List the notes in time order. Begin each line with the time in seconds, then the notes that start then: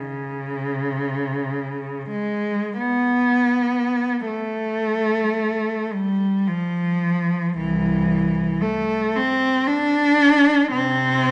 Already playing: C#3
2.09 G#3
2.78 B3
4.27 A3
5.94 G3
6.47 F3
7.56 C2 E3
8.61 A3
9.15 C4
9.67 D4
10.72 C3 C4